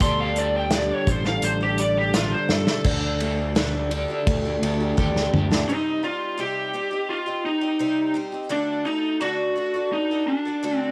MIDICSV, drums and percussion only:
0, 0, Header, 1, 2, 480
1, 0, Start_track
1, 0, Tempo, 708383
1, 7, Time_signature, 4, 2, 24, 8
1, 7396, End_track
2, 0, Start_track
2, 0, Title_t, "Drums"
2, 1, Note_on_c, 9, 42, 101
2, 4, Note_on_c, 9, 36, 113
2, 69, Note_off_c, 9, 42, 0
2, 72, Note_off_c, 9, 36, 0
2, 243, Note_on_c, 9, 42, 73
2, 310, Note_off_c, 9, 42, 0
2, 478, Note_on_c, 9, 42, 99
2, 479, Note_on_c, 9, 38, 111
2, 546, Note_off_c, 9, 42, 0
2, 547, Note_off_c, 9, 38, 0
2, 726, Note_on_c, 9, 36, 94
2, 726, Note_on_c, 9, 42, 80
2, 793, Note_off_c, 9, 42, 0
2, 794, Note_off_c, 9, 36, 0
2, 848, Note_on_c, 9, 38, 29
2, 915, Note_off_c, 9, 38, 0
2, 963, Note_on_c, 9, 42, 103
2, 1031, Note_off_c, 9, 42, 0
2, 1205, Note_on_c, 9, 42, 76
2, 1273, Note_off_c, 9, 42, 0
2, 1448, Note_on_c, 9, 42, 104
2, 1449, Note_on_c, 9, 38, 127
2, 1516, Note_off_c, 9, 42, 0
2, 1517, Note_off_c, 9, 38, 0
2, 1687, Note_on_c, 9, 38, 57
2, 1755, Note_off_c, 9, 38, 0
2, 1809, Note_on_c, 9, 38, 90
2, 1876, Note_off_c, 9, 38, 0
2, 1927, Note_on_c, 9, 49, 111
2, 1929, Note_on_c, 9, 36, 118
2, 1995, Note_off_c, 9, 49, 0
2, 1997, Note_off_c, 9, 36, 0
2, 2170, Note_on_c, 9, 51, 77
2, 2238, Note_off_c, 9, 51, 0
2, 2412, Note_on_c, 9, 51, 98
2, 2413, Note_on_c, 9, 38, 117
2, 2480, Note_off_c, 9, 38, 0
2, 2480, Note_off_c, 9, 51, 0
2, 2651, Note_on_c, 9, 51, 78
2, 2718, Note_off_c, 9, 51, 0
2, 2893, Note_on_c, 9, 36, 127
2, 2893, Note_on_c, 9, 51, 116
2, 2961, Note_off_c, 9, 36, 0
2, 2961, Note_off_c, 9, 51, 0
2, 3137, Note_on_c, 9, 51, 89
2, 3204, Note_off_c, 9, 51, 0
2, 3374, Note_on_c, 9, 36, 94
2, 3374, Note_on_c, 9, 48, 75
2, 3441, Note_off_c, 9, 48, 0
2, 3442, Note_off_c, 9, 36, 0
2, 3498, Note_on_c, 9, 38, 67
2, 3566, Note_off_c, 9, 38, 0
2, 3615, Note_on_c, 9, 45, 87
2, 3683, Note_off_c, 9, 45, 0
2, 3737, Note_on_c, 9, 38, 85
2, 3805, Note_off_c, 9, 38, 0
2, 7396, End_track
0, 0, End_of_file